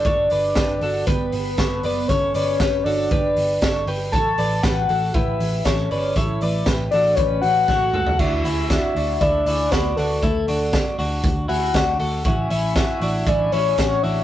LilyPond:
<<
  \new Staff \with { instrumentName = "Soft synth lead" } { \time 4/4 \key d \major \tempo 4 = 118 d''2 b'2 | cis''4. d''2 r8 | a''4 fis''4 e''4 cis''4 | e''4 r8 d''8 cis''8 fis''4. |
e''2 d''4 b'8 a'8~ | a'4. r4 fis''4 r8 | e''2 d''8 cis''4 e''8 | }
  \new Staff \with { instrumentName = "Clean electric guitar" } { \time 4/4 \key d \major <a' cis''>8 <b' d''>8 <g' b'>8 <fis' a'>8 <g' b'>4 <a' cis''>8 <b' d''>8 | <a' cis''>8 <b' d''>8 <g' b'>8 <fis' a'>8 <g' b'>4 <a' cis''>8 <g' b'>8 | <a' cis''>8 <b' d''>8 <g' b'>8 <fis' a'>8 <g' b'>4 <a' cis''>8 <b' d''>8 | <a' cis''>8 <b' d''>8 <g' b'>8 <fis' a'>8 <g' b'>4 <a' cis''>8 <fis' a'>8 |
<d' fis'>8 <cis' e'>8 <d' fis'>8 <d' fis'>8 <a e'>8 <cis' e'>8 <d' fis'>8 <d' fis'>8 | <a e'>8 <d' fis'>4 <d' fis'>4 <cis' e'>8 <d' fis'>8 <fis' a'>8 | <cis' fis'>8 <cis' e'>8 <cis' fis'>8 <d' fis'>8 <cis' e'>8 <cis' e'>8 <cis' fis'>8 <d' fis'>8 | }
  \new Staff \with { instrumentName = "Picked electric bass" } { \clef bass \time 4/4 \key d \major g,,8 g,,8 g,,8 g,,8 g,,8 g,,8 g,,8 fis,,8 | g,,8 g,,8 g,,8 g,,8 g,,8 g,,8 g,,8 g,,8 | a,,8 a,,8 a,,8 a,,8 a,,8 a,,8 a,,8 g,,8 | a,,8 a,,8 a,,8 a,,8 a,,8 a,,8 a,,8 cis,8 |
d,8 d,8. r16 d,8 d,8 d,8 d,8 d,8 | d,8 d,8. r16 d,8 d,8 d,8 d,8 d,8 | a,,8 a,,8. r16 a,,8 a,,8 a,,8 a,,8 a,,8 | }
  \new DrumStaff \with { instrumentName = "Drums" } \drummode { \time 4/4 <hh bd>8 hho8 <hh bd sn>8 hho8 <hh bd>8 hho8 <hh bd sn>8 hho8 | <hh bd>8 hho8 <hh bd sn>8 hho8 <hh bd>8 hho8 <hh bd sn>8 hho8 | <hh bd>8 hho8 <hh bd sn>8 hho8 <hh bd>8 hho8 <hh bd sn>8 hho8 | <hh bd>8 hho8 <hh bd sn>8 hho8 <hh bd>8 hho8 <bd sn>8 toml16 tomfh16 |
<cymc bd>8 hho8 <hh bd sn>8 hho8 <hh bd>8 hho8 <hh bd sn>8 hho8 | <hh bd>8 hho8 <hh bd sn>8 hho8 <hh bd>8 hho8 <hh bd sn>8 hho8 | <hh bd>8 hho8 <hh bd sn>8 hho8 <hh bd>8 hho8 <hh bd sn>8 hho8 | }
>>